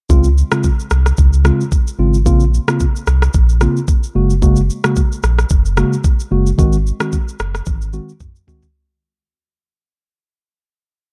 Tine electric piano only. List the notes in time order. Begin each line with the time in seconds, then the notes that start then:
0.10 C#3 G#3 C4 F4
0.51 C#3 G#3 C4 F4
1.45 C#3 G#3 C4 F4
1.99 C#3 G#3 C4 F4
2.26 C#3 A#3 C4 F4
2.68 C#3 A#3 C4 F4
3.61 C#3 A#3 C4 F4
4.15 C#3 G#3 A#3 F#4
4.42 C#3 G#3 A#3 F#4
4.84 C#3 G#3 A#3 F#4
5.77 C#3 G#3 A#3 F#4
6.31 C#3 G#3 A#3 F#4
6.58 D#3 G#3 C4 F#4
7.00 D#3 G#3 C4 F#4
7.93 D#3 G#3 C4 F#4
8.48 D#3 G#3 C4 F#4